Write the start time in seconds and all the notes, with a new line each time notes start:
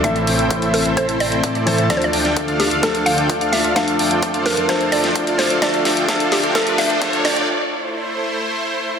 0.03 A1 A2 E3 A3 C4 E4 A4 C5 E5, kick, closed hi-hat
0.16 closed hi-hat
0.27 A1 C4 E4 A4 C5 G5, open hi-hat
0.39 closed hi-hat
0.50 kick, closed hi-hat
0.62 A1 C4 E4 A4 C5 E5, closed hi-hat
0.74 A4, open hi-hat
0.85 A1 C4 E4 A4 C5 E5, closed hi-hat
0.97 A1 C4 E4 A4 C5 E5, kick, closed hi-hat
1.09 closed hi-hat
1.20 A1 C4 E4 A4 C5 D5 G5, open hi-hat
1.32 closed hi-hat
1.44 A2 C4 E4 A4 C5, kick, closed hi-hat
1.55 closed hi-hat
1.66 A2 E3 A3 C4 E4 A4 C5 A5, open hi-hat
1.78 closed hi-hat
1.89 D2 F3 A3 D4 F4 A4 D5 F5, kick, snare, closed hi-hat, riser
1.97 C5
2.02 D5, closed hi-hat
2.13 D2 D4 F4 A4 D5 G5, open hi-hat
2.25 snare, closed hi-hat
2.37 kick, closed hi-hat
2.48 D2 D4 F4 A4 D5 F5, closed hi-hat
2.60 G4, snare, open hi-hat
2.71 D2 D4 F4 A4 D5 F5, closed hi-hat
2.82 D2 F3 A3 D4 F4 A4 D5, kick, snare, closed hi-hat
2.95 closed hi-hat
3.06 D2 D4 F4 A4 D5 F5 G5, open hi-hat
3.18 closed hi-hat
3.30 kick, closed hi-hat
3.41 D2 D4 F4 A4 D5 F5, closed hi-hat
3.52 E5, snare, open hi-hat
3.64 D2 D4 F4 A4 D5 F5, closed hi-hat
3.75 F2 F3 A3 D4 F4 A4 C5 D5 F5, kick, snare, closed hi-hat
3.88 closed hi-hat
3.99 F2 D4 F4 A4 D5 G5, open hi-hat
4.11 closed hi-hat
4.23 kick, closed hi-hat
4.34 F2 D4 F4 A4 D5 F5, closed hi-hat
4.46 A#4, snare, open hi-hat
4.57 F2 D4 F4 A4 D5 F5, closed hi-hat
4.68 F2 F3 A3 D4 F4 A4 C5 D5, kick, snare, closed hi-hat
4.81 closed hi-hat
4.92 F2 D4 F4 A4 D5 G5, open hi-hat
5.04 snare, closed hi-hat
5.16 kick, closed hi-hat
5.27 F2 D4 F4 A4 D5 F5, closed hi-hat
5.39 C5, snare, open hi-hat
5.50 D2 D4 F4 A4 D5 F5, closed hi-hat
5.61 D2 F3 A3 D4 F4 A4 D5, kick, snare, closed hi-hat
5.74 closed hi-hat
5.85 D2 D4 F4 A4 D5 G5, snare, open hi-hat
5.97 closed hi-hat
6.07 D2 F3 A3 D4 F4 A4 F5, kick, snare, closed hi-hat
6.20 closed hi-hat
6.32 D2 D4 F4 G4 A4 D5 G5, snare, open hi-hat
6.43 closed hi-hat
6.54 D2 F3 A3 D4 F4 A4 D5, kick, snare, closed hi-hat
6.67 closed hi-hat
6.78 D2 D4 F4 A4 D5 E5 G5, snare, open hi-hat
6.90 closed hi-hat
7.00 D2 F3 A3 D4 F4 A4 F5, kick, snare, closed hi-hat
7.13 closed hi-hat
7.25 D2 D4 F4 A4 D5 G5, snare, open hi-hat
7.36 closed hi-hat
7.48 A3 E4 C5